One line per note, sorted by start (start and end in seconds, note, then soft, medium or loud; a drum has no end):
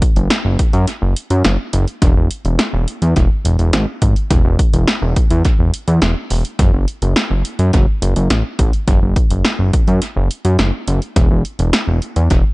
0.02 kick loud
0.02 closed hi-hat medium
0.16 0.29 F#1 loud
0.16 closed hi-hat medium
0.30 snare loud
0.30 closed hi-hat medium
0.45 0.57 F#1 loud
0.59 kick medium
0.59 closed hi-hat medium
0.73 0.86 F#2 loud
0.73 closed hi-hat soft
0.87 closed hi-hat medium
1.02 1.15 F#1 loud
1.16 closed hi-hat medium
1.30 1.43 F#2 loud
1.30 closed hi-hat medium
1.44 1.57 F#1 loud
1.44 snare loud
1.44 closed hi-hat medium
1.73 1.86 F#1 loud
1.73 closed hi-hat medium
1.88 closed hi-hat medium
2.02 2.15 E1 loud
2.02 kick loud
2.02 closed hi-hat medium
2.16 2.29 E1 loud
2.31 closed hi-hat medium
2.45 2.57 E1 loud
2.45 closed hi-hat medium
2.59 snare loud
2.59 closed hi-hat medium
2.73 2.86 E1 loud
2.88 closed hi-hat medium
3.02 3.15 E2 medium
3.02 closed hi-hat soft
3.16 3.29 E1 loud
3.16 kick loud
3.16 closed hi-hat medium
3.45 3.57 E1 loud
3.45 closed hi-hat medium
3.59 3.72 E1 loud
3.59 closed hi-hat medium
3.73 3.86 G#1 medium
3.73 snare loud
3.73 closed hi-hat medium
4.02 4.15 G#1 medium
4.02 kick medium
4.02 closed hi-hat medium
4.16 closed hi-hat medium
4.31 4.43 E1 loud
4.31 kick loud
4.31 closed hi-hat medium
4.45 4.57 E1 loud
4.59 kick loud
4.59 closed hi-hat medium
4.73 4.86 E1 medium
4.73 closed hi-hat medium
4.88 snare loud
4.88 closed hi-hat medium
5.02 5.15 E1 loud
5.16 kick loud
5.16 closed hi-hat medium
5.30 5.43 E2 loud
5.30 closed hi-hat medium
5.45 kick loud
5.45 closed hi-hat medium
5.59 5.72 E1 medium
5.74 closed hi-hat medium
5.88 6.00 E2 loud
5.88 closed hi-hat medium
6.02 6.15 E1 loud
6.02 snare loud
6.02 closed hi-hat medium
6.30 6.43 E1 loud
6.30 open hi-hat medium
6.45 closed hi-hat medium
6.59 6.72 F#1 loud
6.59 kick loud
6.59 closed hi-hat medium
6.73 6.86 F#1 loud
6.88 closed hi-hat medium
7.02 7.15 F#1 loud
7.02 closed hi-hat medium
7.16 snare loud
7.16 closed hi-hat medium
7.30 7.43 F#1 loud
7.45 closed hi-hat medium
7.59 7.72 F#2 loud
7.59 closed hi-hat soft
7.73 7.86 F#1 loud
7.73 kick loud
7.73 closed hi-hat medium
8.02 8.15 F#1 loud
8.02 closed hi-hat medium
8.16 8.29 F#1 loud
8.16 closed hi-hat medium
8.30 8.43 A1 loud
8.30 snare loud
8.30 closed hi-hat medium
8.59 8.72 A1 loud
8.59 kick loud
8.59 closed hi-hat medium
8.73 closed hi-hat medium
8.88 9.00 F#1 loud
8.88 kick loud
8.88 closed hi-hat medium
9.02 9.15 F#1 loud
9.16 kick loud
9.16 closed hi-hat medium
9.30 9.43 F#1 medium
9.30 closed hi-hat medium
9.45 snare loud
9.45 closed hi-hat medium
9.59 9.72 F#1 loud
9.73 kick loud
9.73 closed hi-hat medium
9.88 10.00 F#2 loud
9.88 closed hi-hat soft
10.02 closed hi-hat medium
10.16 10.29 F#1 loud
10.31 closed hi-hat medium
10.45 10.57 F#2 loud
10.45 closed hi-hat medium
10.59 10.72 F#1 loud
10.59 snare loud
10.59 closed hi-hat medium
10.88 11.00 F#1 loud
10.88 closed hi-hat medium
11.02 closed hi-hat medium
11.16 11.29 E1 loud
11.16 kick loud
11.16 closed hi-hat medium
11.30 11.43 E1 loud
11.45 closed hi-hat medium
11.59 11.72 E1 loud
11.59 closed hi-hat medium
11.73 snare loud
11.73 closed hi-hat medium
11.88 12.00 E1 loud
12.02 closed hi-hat medium
12.16 12.29 E2 medium
12.16 closed hi-hat soft
12.30 12.43 E1 loud
12.30 kick loud
12.30 closed hi-hat medium